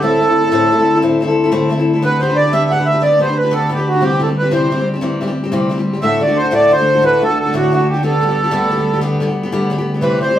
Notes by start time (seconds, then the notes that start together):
Already playing: D2 D3
0.02 A2 A3 C4 E4 A4
0.21 A3 C4 E4 A4
0.29 C4 E4 A4
0.44 C4 E4 A4
0.52 A2 A3 C4 E4 A4
0.71 A3 C4 E4 A4
0.79 C4 E4 A4
0.95 C4 E4 A4
1.02 A2 A3 C4 E4 A4
1.20 A3 C4 E4 A4
1.28 C4 E4 A4
1.43 C4 E4 A4
1.52 A2 A3 C4 E4 A4
1.69 A3 C4 E4 A4
1.78 C4 E4 A4
1.93 C4 E4 A4
2.02 B3 D4 G4 B4
2.20 B3 D4 G4 B4 C5
2.29 D4 G4 B4
2.36 D5
2.44 D4 G4 B4
2.53 B3 D4 G4 B4 E5
2.71 B3 D4 G4 B4 F#5
2.79 D4 G4 B4
2.86 E5
2.92 D4 G4 B4
3.02 B3 D4 G4 B4 D5
3.19 B3 D4 G4 B4 C5
3.28 D4 G4 B4
3.38 B4
3.43 D4 G4 B4
3.51 B3 D4 G4 A4 B4
3.69 B3 D4 G4 B4
3.77 D4 G4 B4
3.88 F#4
3.93 D4 G4 B4
4.01 C3 E3 G3 C4 G4
4.19 E3 G3 C4 G4 A4
4.27 G3 C4 G4
4.38 B4
4.43 G3 C4 G4
4.51 C3 E3 G3 C4 G4 C5
4.70 E3 G3 C4 G4
4.78 G3 C4 G4
4.94 G3 C4 G4
5.01 C3 E3 G3 C4 G4
5.21 E3 G3 C4 G4
5.28 G3 C4 G4
5.44 G3 C4 G4
5.52 C3 E3 G3 C4 G4
5.69 E3 G3 C4 G4
5.78 G3 C4 G4
5.93 G3 C4 G4
6.02 D2 A2 D3 A3 D4 F#4 E5
6.20 D3 A3 D4 F#4 D5
6.27 D3 A3 D4 F#4
6.37 C5
6.43 D3 A3 D4 F#4
6.51 D2 A2 D3 A3 D4 F#4 D5
6.70 D3 A3 D4 F#4 C5
6.79 D3 A3 D4 F#4
6.95 D3 A3 D4 F#4
7.02 D2 A2 D3 A3 D4 F#4 B4
7.20 D3 A3 D4 F#4 A4
7.28 D3 A3 D4 F#4
7.40 A4
7.46 D3 A3 D4 F#4
7.53 D2 A2 D3 A3 D4 F#4
7.72 D3 A3 D4 F#4
7.79 D3 A3 D4 F#4
7.89 G4
7.94 D3 A3 D4 F#4
8.03 D3 G3 B3 G4 A4
8.21 D3 G3 B3 G4
8.28 G3 B3 G4
8.44 G3 B3 G4
8.51 D3 G3 B3 G4
8.70 D3 G3 B3 G4
8.78 G3 B3 G4
8.93 G3 B3 G4
9.01 D3 G3 B3 G4
9.20 D3 G3 B3 G4
9.28 G3 B3 G4
9.43 G3 B3 G4
9.52 D3 G3 B3 G4
9.70 D3 G3 B3 G4
9.78 G3 B3 G4
9.94 G3 B3 G4
10.01 C3 E3 G3 C4 G4 B4
10.21 E3 G3 C4 G4 C5
10.29 G3 C4 G4